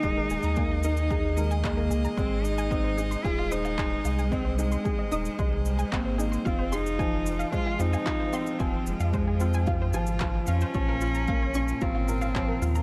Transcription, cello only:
X:1
M:4/4
L:1/8
Q:1/4=112
K:Ab
V:1 name="Cello"
E4- E A, B,2 | C E3 F E3 | C A,4 A, B,2 | C E3 F E3 |
C A,4 z2 D- | D4 C4 |]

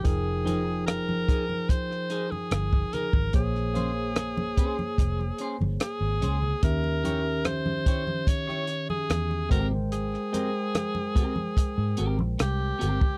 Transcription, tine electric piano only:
X:1
M:4/4
L:1/8
Q:1/4=73
K:Fm
V:1 name="Tine electric piano"
[F,EABg] [F,EAcg]4 z3 | [B,Acd] [B,Acd]4 z3 | [E,DG_f] [E,DGf]4 z2 [A,Bcg]- | [A,Bcg] [A,Bcg]4 z3 |]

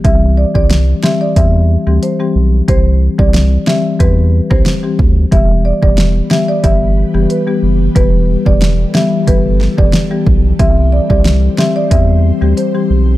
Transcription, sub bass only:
X:1
M:4/4
L:1/16
Q:1/4=91
K:Clyd
V:1 name="Sub bass" clef=bass
C,,3 C,,3 z2 E,,3 D,, z2 B,,,2 | C,,3 C,,3 z2 E,,3 C,, z2 D,,2 | E,,,3 E,,,3 z2 G,,,3 F,,, z2 F,,,2 | E,,,3 E,,,3 z2 G,,,3 E,,, z2 B,,,2 |
C,,3 C,,3 z2 E,,3 D,, z2 B,,,2 |]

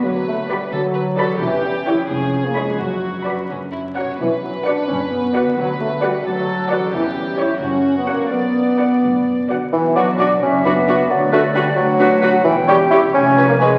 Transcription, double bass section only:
X:1
M:6/8
L:1/8
Q:3/8=87
K:Bm
V:1 name="Double bass section" clef=bass
D,,3 D,,3 | E,,,3 ^E,,,3 | F,,,3 F,,,3 | B,,,3 F,,,3 |
D,,3 D,,3 | E,,,3 F,,,3 | B,,,3 F,,,3 | B,,,3 F,,,3 |
D,,3 D,,3 | E,,,3 ^E,,,3 |]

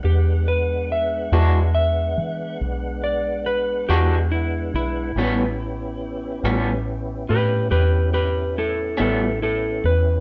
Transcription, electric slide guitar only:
X:1
M:12/8
L:1/8
Q:3/8=47
K:A
V:1 name="Electric slide guitar"
=G B e2 e2 z d B G E E- | E3 z2 [=GB] [GB] [GB] [EA] [EA] [EA] B |]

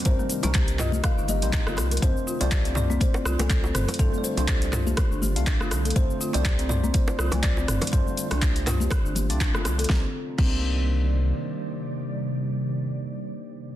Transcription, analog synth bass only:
X:1
M:4/4
L:1/16
Q:"Swing 16ths" 1/4=122
K:Cdor
V:1 name="Analog synth bass" clef=bass
C,, z2 C,,4- C,, z G,,,2 B,,,2 G,,, C,,2 | C,, z2 C,,4- C,, z2 C,, C,,3 G,,, z | C,, z2 C,,4- C,, z G,,,2 C,,2 G,,, C,,2 | C,, z2 C,,4- C,, z2 C,, C,,3 G,,, z |
C,, z2 C,,4- C,, z G,,,2 C,,2 G,,, C,,2 | C,, z3 C,,8 z4 | z16 |]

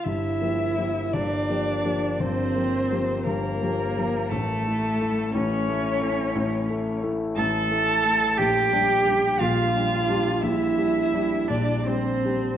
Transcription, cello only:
X:1
M:12/8
L:1/8
Q:3/8=58
K:Gdor
V:1 name="Cello"
E3 D3 C3 B,3 | A,3 ^C4- C z A3 | G3 F3 E3 D C2 |]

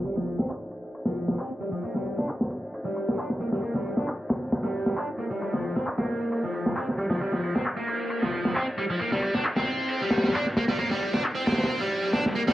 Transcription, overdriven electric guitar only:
X:1
M:4/4
L:1/16
Q:"Swing 16ths" 1/4=134
K:Gm
V:1 name="Overdriven electric guitar" clef=bass
G, F,2 C z4 z F,3 C z G, F, | B, G,2 D z4 z G,3 D z B, G, | B, G,2 D z4 z G,3 D z B, G, | G, F,2 C z B,4 F,3 C z G, F, |
G, F,2 C z B,4 F,3 C z G, F, | B, G,2 D z C4 G,3 D z B, G, | B, G,2 D z C4 G,3 D z B, G, |]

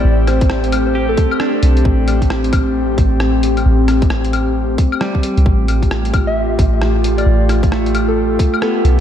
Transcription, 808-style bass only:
X:1
M:4/4
L:1/16
Q:"Swing 16ths" 1/4=133
K:Am
V:1 name="808-style bass" clef=bass
A,,,8- A,,,2 z4 B,,,2 | z8 z2 A,,,6 | A,,,8- A,,,2 z4 z C,, | A,,,8- A,,,2 A,,,6 |
A,,,8- A,,,2 z4 B,,,2 |]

